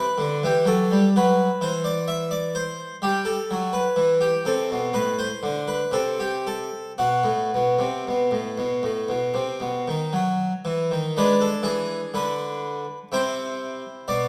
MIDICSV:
0, 0, Header, 1, 2, 480
1, 0, Start_track
1, 0, Key_signature, 1, "minor"
1, 0, Tempo, 941915
1, 1534, Time_signature, 4, 2, 24, 8
1, 1534, Tempo, 964630
1, 2494, Tempo, 1020408
1, 3454, Tempo, 1048951
1, 5374, Tempo, 969305
1, 6912, End_track
2, 0, Start_track
2, 0, Title_t, "Harpsichord"
2, 0, Program_c, 0, 6
2, 0, Note_on_c, 0, 71, 72
2, 91, Note_on_c, 0, 50, 46
2, 181, Note_off_c, 0, 71, 0
2, 207, Note_off_c, 0, 50, 0
2, 221, Note_on_c, 0, 52, 49
2, 228, Note_on_c, 0, 67, 63
2, 333, Note_on_c, 0, 54, 47
2, 334, Note_off_c, 0, 52, 0
2, 341, Note_on_c, 0, 69, 64
2, 343, Note_off_c, 0, 67, 0
2, 450, Note_off_c, 0, 54, 0
2, 465, Note_on_c, 0, 55, 49
2, 546, Note_off_c, 0, 69, 0
2, 577, Note_off_c, 0, 55, 0
2, 592, Note_on_c, 0, 54, 55
2, 595, Note_on_c, 0, 71, 72
2, 761, Note_off_c, 0, 54, 0
2, 822, Note_on_c, 0, 52, 47
2, 826, Note_on_c, 0, 72, 65
2, 828, Note_off_c, 0, 71, 0
2, 939, Note_on_c, 0, 74, 66
2, 942, Note_off_c, 0, 72, 0
2, 1058, Note_off_c, 0, 74, 0
2, 1058, Note_on_c, 0, 76, 71
2, 1177, Note_off_c, 0, 76, 0
2, 1177, Note_on_c, 0, 74, 66
2, 1296, Note_off_c, 0, 74, 0
2, 1299, Note_on_c, 0, 72, 73
2, 1336, Note_off_c, 0, 52, 0
2, 1501, Note_off_c, 0, 72, 0
2, 1539, Note_on_c, 0, 55, 52
2, 1543, Note_on_c, 0, 67, 78
2, 1654, Note_on_c, 0, 69, 68
2, 1656, Note_off_c, 0, 67, 0
2, 1707, Note_off_c, 0, 55, 0
2, 1782, Note_on_c, 0, 54, 45
2, 1889, Note_off_c, 0, 69, 0
2, 1892, Note_on_c, 0, 71, 68
2, 1949, Note_off_c, 0, 54, 0
2, 2008, Note_on_c, 0, 52, 45
2, 2095, Note_off_c, 0, 71, 0
2, 2130, Note_on_c, 0, 67, 61
2, 2183, Note_off_c, 0, 52, 0
2, 2251, Note_off_c, 0, 67, 0
2, 2252, Note_on_c, 0, 48, 44
2, 2256, Note_on_c, 0, 69, 63
2, 2367, Note_off_c, 0, 48, 0
2, 2380, Note_on_c, 0, 47, 45
2, 2461, Note_off_c, 0, 69, 0
2, 2491, Note_on_c, 0, 45, 46
2, 2492, Note_off_c, 0, 47, 0
2, 2494, Note_on_c, 0, 71, 71
2, 2610, Note_off_c, 0, 71, 0
2, 2610, Note_on_c, 0, 72, 68
2, 2660, Note_off_c, 0, 45, 0
2, 2724, Note_on_c, 0, 50, 45
2, 2810, Note_off_c, 0, 72, 0
2, 2841, Note_on_c, 0, 71, 64
2, 2896, Note_off_c, 0, 50, 0
2, 2953, Note_on_c, 0, 48, 45
2, 2959, Note_on_c, 0, 69, 62
2, 2963, Note_off_c, 0, 71, 0
2, 3083, Note_off_c, 0, 69, 0
2, 3085, Note_on_c, 0, 67, 56
2, 3207, Note_off_c, 0, 67, 0
2, 3213, Note_on_c, 0, 69, 65
2, 3309, Note_off_c, 0, 48, 0
2, 3421, Note_off_c, 0, 69, 0
2, 3455, Note_on_c, 0, 66, 65
2, 3456, Note_on_c, 0, 47, 49
2, 3571, Note_off_c, 0, 47, 0
2, 3571, Note_on_c, 0, 45, 41
2, 3689, Note_off_c, 0, 45, 0
2, 3712, Note_on_c, 0, 47, 45
2, 3821, Note_off_c, 0, 47, 0
2, 3823, Note_on_c, 0, 48, 44
2, 3937, Note_off_c, 0, 48, 0
2, 3954, Note_on_c, 0, 47, 42
2, 4063, Note_off_c, 0, 47, 0
2, 4064, Note_on_c, 0, 45, 39
2, 4176, Note_off_c, 0, 45, 0
2, 4184, Note_on_c, 0, 47, 40
2, 4296, Note_off_c, 0, 47, 0
2, 4301, Note_on_c, 0, 45, 40
2, 4414, Note_off_c, 0, 45, 0
2, 4417, Note_on_c, 0, 47, 46
2, 4532, Note_off_c, 0, 47, 0
2, 4533, Note_on_c, 0, 48, 42
2, 4650, Note_off_c, 0, 48, 0
2, 4653, Note_on_c, 0, 47, 42
2, 4683, Note_off_c, 0, 66, 0
2, 4770, Note_off_c, 0, 47, 0
2, 4779, Note_on_c, 0, 51, 42
2, 4894, Note_off_c, 0, 51, 0
2, 4895, Note_on_c, 0, 54, 42
2, 5070, Note_off_c, 0, 54, 0
2, 5133, Note_on_c, 0, 52, 43
2, 5249, Note_off_c, 0, 52, 0
2, 5254, Note_on_c, 0, 51, 41
2, 5365, Note_off_c, 0, 51, 0
2, 5370, Note_on_c, 0, 62, 41
2, 5373, Note_on_c, 0, 56, 62
2, 5374, Note_on_c, 0, 71, 90
2, 5491, Note_on_c, 0, 69, 74
2, 5496, Note_off_c, 0, 71, 0
2, 5548, Note_off_c, 0, 56, 0
2, 5598, Note_on_c, 0, 52, 55
2, 5601, Note_on_c, 0, 68, 75
2, 5614, Note_off_c, 0, 69, 0
2, 5780, Note_off_c, 0, 52, 0
2, 5851, Note_off_c, 0, 68, 0
2, 5851, Note_on_c, 0, 50, 53
2, 5856, Note_on_c, 0, 71, 75
2, 6199, Note_off_c, 0, 50, 0
2, 6264, Note_off_c, 0, 71, 0
2, 6316, Note_off_c, 0, 62, 0
2, 6336, Note_on_c, 0, 48, 57
2, 6340, Note_on_c, 0, 64, 38
2, 6344, Note_on_c, 0, 72, 85
2, 6680, Note_off_c, 0, 48, 0
2, 6812, Note_on_c, 0, 47, 57
2, 6812, Note_on_c, 0, 74, 79
2, 6818, Note_off_c, 0, 72, 0
2, 6912, Note_off_c, 0, 47, 0
2, 6912, Note_off_c, 0, 64, 0
2, 6912, Note_off_c, 0, 74, 0
2, 6912, End_track
0, 0, End_of_file